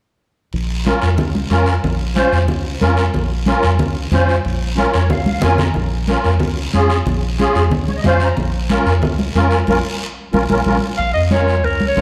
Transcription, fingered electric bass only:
0.53 0.92 A#1 medium
1.03 1.18 F2 medium
1.18 1.44 C#2 medium
1.50 1.77 F2 medium
1.84 2.23 A#1 medium
2.32 2.49 F2 medium
2.49 2.75 C#2 medium
2.82 3.08 F2 medium
3.15 3.54 A#1 medium
3.64 3.81 F2 medium
3.81 4.06 C#2 medium
4.12 4.38 F2 medium
4.45 4.85 A#1 medium
4.95 5.11 F2 medium
5.11 5.37 C#2 medium
5.43 5.69 F2 medium
5.76 6.15 A#1 loud
6.25 6.41 F2 medium
6.41 6.67 C#2 medium
6.74 7.00 F2 medium
7.06 7.46 A#1 medium
7.55 7.71 F2 medium
7.71 7.98 C#2 medium
8.05 8.31 F2 medium
8.37 8.77 A#1 medium
8.86 9.02 F2 medium
9.02 9.29 C#2 medium
9.35 9.61 F2 medium
9.68 9.80 A#1 loud
10.33 10.46 A#1 medium
10.50 10.62 A#1 medium
10.66 10.78 A#1 medium
10.99 11.12 A#1 medium
11.15 11.65 F2 medium
11.65 11.91 C#2 medium
11.97 12.01 A#1 medium

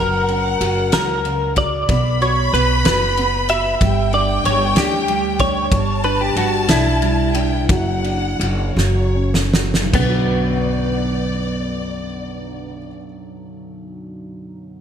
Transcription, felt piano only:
0.00 0.91 F#3 medium
0.28 1.53 C#4 medium
0.60 1.55 F#4 medium
0.93 1.86 F#3 medium
1.25 1.87 C#3 medium
1.57 1.88 F#4 medium
1.88 2.51 B3 medium
2.21 2.83 F#4 medium
2.53 3.16 B3 medium
2.85 3.48 F#4 medium
3.17 3.79 B3 medium
3.49 3.80 F#4 medium
3.81 4.44 G3 medium
4.13 4.75 D4 medium
4.45 5.07 G3 medium
4.77 5.38 D4 medium
5.08 5.70 G3 medium
5.40 5.71 D4 medium
5.72 6.35 G3 medium
6.05 6.68 D4 medium
6.37 7.01 G3 medium
6.70 7.34 D4 medium
7.02 7.67 G3 medium
7.36 7.68 D4 medium
7.70 8.38 F#3 medium
8.04 8.74 D4 medium
8.40 8.75 F#3 medium
8.76 9.52 F#3 medium
9.14 9.91 C#4 medium
9.53 9.92 F#3 medium
9.81 12.79 B1 medium
9.90 12.87 F#2 medium
9.99 12.96 D3 medium
10.08 13.05 F#3 medium

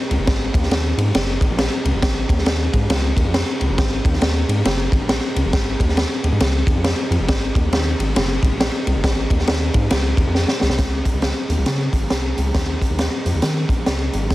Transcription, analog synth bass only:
0.10 0.17 C#2 loud
0.18 0.26 F#1 medium
0.27 0.49 G#1 loud
0.54 0.68 D#2 medium
0.71 0.93 D#2 loud
0.97 1.12 G#2 medium
1.15 1.37 F#1 loud
1.41 1.49 G#1 loud
1.50 1.68 A#1 medium
1.85 1.92 C#2 loud
1.93 2.01 F#1 medium
2.02 2.25 G#1 loud
2.29 2.43 D#2 medium
2.46 2.68 D#2 medium
2.73 2.87 G#2 loud
2.90 3.12 C#2 loud
3.16 3.24 D#2 loud
3.25 3.43 F2 medium
3.61 3.68 C#2 medium
3.69 3.76 F#1 medium
3.78 4.00 G#1 loud
4.05 4.19 D#2 medium
4.22 4.44 D#2 medium
4.48 4.63 G#2 loud
4.65 4.88 F#1 loud
4.92 4.99 G#1 loud
5.01 5.19 A#1 medium
5.36 5.43 C#2 loud
5.45 5.52 F#1 medium
5.53 5.75 G#1 loud
5.80 6.05 D#2 loud
6.24 6.31 D#2 medium
6.32 6.39 G#2 medium
6.40 6.63 C#2 loud
6.67 6.74 D#2 medium
6.75 6.94 F2 medium
7.10 7.18 F2 loud
7.19 7.27 F#1 medium
7.29 7.51 G#1 loud
7.55 7.69 D#2 loud
7.72 7.94 D#2 loud
7.99 8.13 G#1 medium
8.16 8.38 F#1 loud
8.43 8.50 G#1 loud
8.51 8.69 A#1 medium
8.87 8.94 C2 loud
8.96 9.02 F#1 medium
9.04 9.26 G#1 loud
9.30 9.44 D#2 medium
9.48 9.70 D#2 medium
9.74 9.88 G#2 medium
9.91 10.13 C#2 loud
10.17 10.25 D#2 medium
10.27 10.45 F2 medium
10.62 10.69 C#2 medium
10.70 10.77 C2 medium
10.79 11.01 C#2 loud
11.14 11.32 C#2 loud
11.49 11.56 D#2 medium
11.58 11.65 C#2 medium
11.66 11.88 C#3 loud
11.93 12.07 G#1 medium
12.11 12.33 C2 medium
12.38 12.52 C#2 medium
12.55 12.77 D#2 loud
12.90 13.08 D#2 medium
13.26 13.33 F2 medium
13.35 13.41 D#2 medium
13.43 13.65 D#3 loud
13.69 13.83 A#1 medium
13.87 14.09 C#2 loud
14.14 14.35 G#1 loud

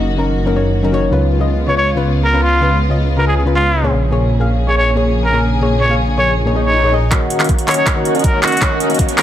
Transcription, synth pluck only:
0.00 0.15 F#3 medium
0.00 0.15 C#4 medium
0.00 0.16 D#4 medium
0.00 0.16 D#5 medium
0.17 0.22 F#3 medium
0.17 0.23 C#4 medium
0.17 0.23 D#4 medium
0.17 0.23 A#4 medium
0.45 0.53 F#3 medium
0.45 0.53 C#4 medium
0.45 0.54 D#4 medium
0.45 0.54 A#4 loud
0.54 0.81 F#3 medium
0.54 0.81 C#4 medium
0.54 0.81 D#4 medium
0.54 0.82 C#5 medium
0.83 0.88 F#3 medium
0.83 0.88 C#4 medium
0.83 0.89 D#4 medium
0.83 0.89 A#4 loud
0.92 1.09 F#3 loud
0.92 1.09 C#4 medium
0.92 1.10 D#4 medium
0.92 1.10 C#5 loud
1.11 1.37 C#3 medium
1.11 1.37 C#4 medium
1.11 1.38 F4 medium
1.11 1.38 B4 loud
1.39 1.65 C#3 medium
1.39 1.65 C#4 medium
1.39 1.66 F4 medium
1.39 1.66 D#5 medium
1.67 1.72 C#3 medium
1.67 1.73 C#4 medium
1.67 1.73 F4 medium
1.67 1.73 B4 medium
1.95 2.03 C#3 medium
1.95 2.04 C#4 medium
1.95 2.04 F4 medium
1.95 2.04 B4 loud
2.33 2.59 C#3 medium
2.33 2.59 C#4 medium
2.33 2.60 F4 medium
2.33 2.60 B4 medium
2.61 2.87 C#3 medium
2.61 2.87 C#4 medium
2.61 2.88 F4 medium
2.61 2.88 B4 medium
2.89 3.15 C#3 medium
2.89 3.15 C#4 medium
2.89 3.16 F4 medium
2.89 3.16 D#5 medium
3.17 3.22 C#3 medium
3.17 3.23 C#4 medium
3.17 3.23 F4 medium
3.17 3.23 B4 medium
3.45 3.53 C#3 medium
3.45 3.54 C#4 medium
3.45 3.54 F4 medium
3.45 3.54 B4 loud
3.82 4.09 A#2 medium
3.82 4.09 A#3 medium
3.82 4.09 G#4 medium
3.82 4.10 C#5 medium
4.11 4.37 A#2 medium
4.11 4.37 A#3 medium
4.11 4.38 G#4 medium
4.11 4.38 C#5 loud
4.39 4.65 A#2 medium
4.39 4.65 A#3 medium
4.39 4.66 G#4 medium
4.39 4.66 F5 medium
4.67 4.72 A#2 medium
4.67 4.73 A#3 medium
4.67 4.73 G#4 medium
4.67 4.73 C#5 medium
4.95 5.03 A#2 medium
4.95 5.04 A#3 medium
4.95 5.04 G#4 medium
4.95 5.04 C#5 loud
5.32 5.59 A#2 medium
5.32 5.59 A#3 medium
5.32 5.59 G#4 medium
5.32 5.60 C#5 medium
5.60 5.87 A#2 medium
5.60 5.87 A#3 medium
5.60 5.88 G#4 medium
5.60 5.88 C#5 loud
5.89 6.15 A#2 medium
5.89 6.15 A#3 medium
5.89 6.16 G#4 medium
5.89 6.16 F5 medium
6.17 6.22 A#2 medium
6.17 6.23 A#3 medium
6.17 6.23 G#4 medium
6.17 6.23 C#5 medium
6.45 6.53 A#2 loud
6.45 6.53 A#3 medium
6.45 6.54 G#4 medium
6.45 6.54 C#5 loud
6.54 6.81 A#2 medium
6.54 6.81 A#3 medium
6.54 6.81 G#4 medium
6.54 6.82 D#5 medium
6.82 6.88 A#2 loud
6.82 6.88 A#3 medium
6.82 6.89 G#4 medium
6.82 6.89 C#5 loud
6.92 7.09 A#2 medium
6.92 7.09 A#3 medium
6.92 7.09 G#4 medium
6.92 7.10 D#5 loud
7.11 7.37 D#3 medium
7.11 7.37 A#3 medium
7.11 7.38 F#4 medium
7.11 7.38 C#5 medium
7.39 7.65 D#3 medium
7.39 7.65 A#3 medium
7.39 7.66 F#4 medium
7.39 7.66 F5 medium
7.67 7.72 D#3 medium
7.67 7.73 A#3 medium
7.67 7.73 F#4 medium
7.67 7.73 C#5 medium
7.95 8.03 D#3 loud
7.95 8.04 A#3 medium
7.95 8.04 F#4 medium
7.95 8.04 C#5 loud
8.32 8.59 D#3 medium
8.32 8.59 A#3 medium
8.32 8.60 F#4 medium
8.32 8.60 C#5 loud
8.61 8.87 D#3 medium
8.61 8.87 A#3 medium
8.61 8.88 F#4 medium
8.61 8.88 C#5 loud
8.89 9.15 D#3 medium
8.89 9.15 A#3 medium
8.89 9.16 F#4 medium
8.89 9.16 F5 medium
9.17 9.22 D#3 medium
9.17 9.22 A#3 medium
9.17 9.22 F#4 medium
9.17 9.22 C#5 medium

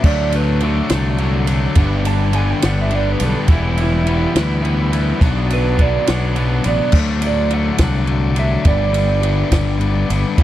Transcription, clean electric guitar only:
0.05 0.33 D5 loud
0.36 0.62 B4 loud
0.62 0.90 F#4 loud
2.07 2.34 A5 loud
2.36 2.50 G#5 medium
2.50 2.63 G5 medium
2.66 2.78 F#5 medium
2.81 2.95 E5 medium
2.95 3.10 D5 medium
3.10 3.25 B4 medium
3.25 3.40 A4 medium
3.40 3.52 F#4 loud
3.52 3.79 E4 loud
3.82 4.36 E4 loud
5.53 5.80 B4 loud
5.81 6.08 D5 medium
6.10 6.65 F#5 medium
6.68 6.95 D5 loud
7.26 7.54 D5 medium
7.54 7.82 F#5 loud
7.83 8.39 F#5 loud
8.39 8.66 E5 loud
8.68 10.07 D5 medium

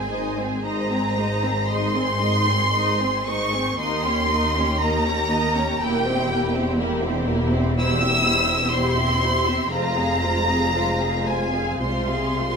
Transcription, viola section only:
0.00 0.11 C4 soft
0.11 0.38 G#3 medium
0.11 0.37 D#4 soft
0.38 0.64 C4 medium
0.65 0.89 G#3 medium
0.65 0.89 D#4 medium
0.91 1.16 C4 soft
1.17 1.42 G#3 medium
1.17 1.42 D#4 medium
1.43 1.69 C4 medium
1.70 1.93 G#3 medium
1.70 1.93 D#4 medium
1.96 2.21 C4 soft
2.21 2.47 G#3 medium
2.21 2.47 D#4 medium
2.48 2.74 C4 medium
2.75 2.99 G#3 medium
2.75 2.99 D#4 medium
3.01 3.27 C4 medium
3.28 3.53 G#3 medium
3.28 3.53 D#4 medium
3.54 3.80 C4 medium
3.81 4.04 A#3 medium
3.81 4.04 D#4 medium
4.05 4.31 C#4 medium
4.32 4.56 A#3 medium
4.32 4.56 D#4 medium
4.57 4.82 C#4 medium
4.82 5.05 A#3 medium
4.82 5.05 D#4 medium
5.07 5.31 C#4 medium
5.31 5.56 A#3 medium
5.31 5.56 D#4 medium
5.57 5.81 C#4 medium
5.81 6.03 A#3 medium
5.81 6.03 G4 medium
6.06 6.30 C4 medium
6.06 6.30 E4 medium
6.29 6.54 A#3 medium
6.29 6.54 G4 medium
6.55 6.79 C4 medium
6.55 6.79 E4 medium
6.80 7.02 A#3 medium
6.80 7.02 G4 medium
7.03 7.28 C4 medium
7.03 7.28 E4 medium
7.28 7.53 A#3 medium
7.28 7.53 G4 medium
7.53 7.77 C4 medium
7.53 7.76 E4 medium
7.77 7.99 E4 medium
7.77 7.99 G4 medium
8.00 8.24 C4 medium
8.00 8.23 E4 medium
8.24 8.47 E4 medium
8.24 8.48 G4 medium
8.49 8.72 C4 medium
8.49 8.71 E4 medium
8.72 8.95 E4 medium
8.72 8.95 G4 medium
8.97 9.21 C4 medium
8.97 9.21 E4 medium
9.22 9.46 E4 medium
9.22 9.46 G4 medium
9.47 9.71 C4 medium
9.47 9.72 E4 medium
9.72 9.95 G#3 medium
9.72 9.95 F4 medium
9.96 10.21 C4 medium
9.96 10.21 G#4 medium
10.22 10.48 G#3 medium
10.22 10.47 F4 medium
10.48 10.74 C4 medium
10.48 10.73 G#4 medium
10.74 10.98 G#3 medium
10.74 10.98 F4 medium
11.00 11.27 C4 soft
11.00 11.27 G#4 soft
11.27 11.54 G#3 soft
11.27 11.54 F4 medium
11.53 11.81 C4 soft
11.53 11.82 G#4 medium
11.81 12.08 G#3 medium
11.81 12.08 F4 medium
12.10 12.39 C4 soft
12.10 12.39 G#4 soft
12.39 12.56 G#3 medium
12.39 12.56 F4 medium

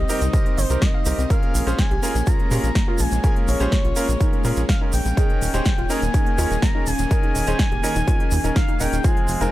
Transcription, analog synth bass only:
0.22 0.29 C2 medium
0.58 0.66 G1 loud
0.70 0.78 C2 medium
1.06 1.14 C2 loud
1.18 1.26 C2 medium
1.54 1.62 A#1 medium
1.67 1.74 A#1 medium
1.91 1.99 A#1 medium
2.15 2.23 A#1 medium
2.51 2.59 A#2 medium
2.64 2.71 A#1 medium
3.00 3.08 A#1 loud
3.12 3.20 A#1 medium
3.48 3.56 A#1 medium
3.60 3.68 A#1 medium
3.85 3.92 A#1 medium
4.09 4.16 A#1 medium
4.45 4.53 A#2 medium
4.57 4.65 A#1 medium
4.93 5.01 A#1 medium
5.05 5.13 A#1 medium
5.41 5.49 D#1 medium
5.54 5.61 D#1 medium
5.78 5.86 D#1 medium
6.02 6.10 D#1 medium
6.38 6.46 D#2 medium
6.51 6.58 D#1 medium
6.87 6.95 D#1 loud
6.99 7.07 D#1 medium
7.35 7.43 D#1 medium
7.47 7.55 D#1 medium
7.72 7.79 D#1 medium
7.96 8.03 D#1 medium
8.32 8.40 D#2 medium
8.44 8.52 D#1 medium
8.80 8.88 D#1 medium
8.93 9.00 D#1 medium
9.29 9.37 F1 medium
9.41 9.49 F1 medium

